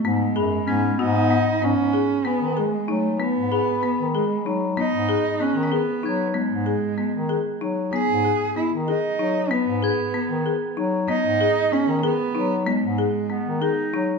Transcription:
X:1
M:5/8
L:1/16
Q:1/4=95
K:G#m
V:1 name="Glockenspiel"
e'2 b8- | b2 z2 g6- | g2 b8- | b4 f' b'3 g'2- |
g'8- g'2 | b'8- b'2- | b'2 g'8- | g'4 b'6- |
b'6 z4 |]
V:2 name="Marimba"
B,2 G2 B,2 F2 B,2 | B,2 G2 B,2 G2 D2 | B,2 G2 B,2 G2 D2 | B,2 G2 B,2 G2 D2 |
B,2 G2 B,2 G2 D2 | B,2 G2 B,2 G2 D2 | B,2 G2 B,2 G2 D2 | B,2 G2 B,2 G2 D2 |
B,2 G2 B,2 G2 D2 |]
V:3 name="Cello"
G,6 D4 | C4 B,2 G,2 =A,2 | B,6 G,3 z | D4 C2 B,4 |
G,8 z2 | G4 E2 D4 | B,8 z2 | D4 C2 B,4 |
G,8 z2 |]
V:4 name="Clarinet"
z4 C2 B, B,3 | z8 z2 | z8 z2 | z8 z2 |
z8 z2 | z8 z2 | z8 z2 | z8 z2 |
z4 B,2 D4 |]
V:5 name="Bass clarinet" clef=bass
G,,2 F,,2 G,,2 G,,4 | G,, G,,2 z2 D,2 z F,2- | F, G,,2 z2 D,2 z F,2- | F, G,,2 z2 D,2 z F,2- |
F, G,,2 z2 D,2 z F,2- | F, G,,2 z2 D,2 z F,2- | F, G,,2 z2 D,2 z F,2- | F, G,,2 z2 D,2 z F,2- |
F, G,,2 z2 D,2 z F,2 |]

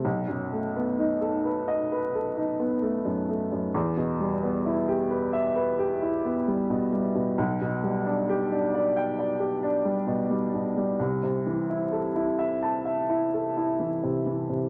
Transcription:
X:1
M:4/4
L:1/16
Q:1/4=65
K:Bphr
V:1 name="Upright piano"
B,,, F,, A, B, ^D A B ^d B A D B, A, F,, A, F,, | E,, B,, G, B, E G B e B G E B, G, B,, G, B,, | [K:G] B,,, B,, G, D G D d g d G D G, B,, G, B,, G, | C,, C, E, E A E e a e E A E E, C, E, C, |]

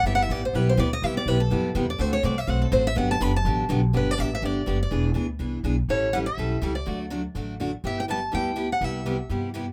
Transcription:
X:1
M:4/4
L:1/8
Q:"Swing" 1/4=246
K:G
V:1 name="Steel-string acoustic guitar"
(3e f e d c B c d _e | e d B A3 z d | c ^c d e f A =c e | f a b a3 z2 |
B d e e d3 d- | d z6 z | ^c2 f e4 d- | d z6 z |
e g a2 g3 f | e4 z4 |]
V:2 name="Steel-string acoustic guitar"
[G,B,EG] z [G,B,EG] z [G,B,EG] z [G,B,EG] z | [C,G,B,EG] z [C,G,B,EG] z [C,G,B,EG] z [C,G,B,EG] z | [D,A,CFA] z [D,A,CFA] z [D,A,CFA] z [D,A,CFA] z | [D,F,B,DG] z [D,F,B,DG] z [D,F,B,DG] z [D,F,B,DG] z |
[D,F,B,DG] z [D,F,B,DG] z [D,F,B,DG] z [D,F,B,DG] z | [E,B,D^G] z [E,B,DG] z [E,B,DG] z [E,B,DG] z | [E,G,^CEA] z [E,G,CEA] z [E,G,CEA] z [E,G,CEA] z | [D,F,A,DF] z [D,F,A,DF] z [D,F,A,DF] z [D,F,A,DF] z |
[G,B,EG] z [G,B,EG] z [G,B,EG] z [G,B,EG] z | [C,G,B,EG] z [C,G,B,EG] z [C,G,B,EG] z [C,G,B,EG] z |]
V:3 name="Upright bass" clef=bass
G,,,2 A,,,2 B,,,2 D,,2 | C,,2 B,,,2 F,,2 E,,2 | D,,2 C,,2 B,,,2 A,,,2 | G,,,2 F,,,2 A,,,2 B,,,2 |
G,,,2 A,,,2 G,,,2 F,,,2 | E,,,2 D,,2 C,,2 B,,,2 | A,,,4 B,,,2 ^C,,2 | D,,4 A,,,4 |
G,,,4 D,,4 | C,,4 G,,4 |]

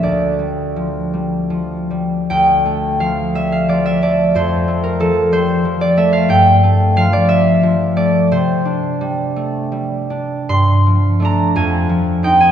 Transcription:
X:1
M:6/8
L:1/16
Q:3/8=58
K:Dm
V:1 name="Harp"
[def]12 | g4 f2 e f d e d2 | c3 B A2 c3 d e f | g4 f d e4 d2 |
c12 | c'4 b2 _a4 g a |]
V:2 name="Harp" clef=bass
[D,,F,A,D]2 G,2 F,2 G,2 F,2 G,2 | D,,2 A,2 F,2 G,2 F,2 A,2 | F,,2 A,2 F,2 G,2 F,2 A,2 | G,,2 A,2 F,2 G,2 F,2 A,2 |
C,2 D2 G,2 A,2 G,2 D2 | G,,2 F,2 [A,D]2 F,,2 F,2 [C_E]2 |]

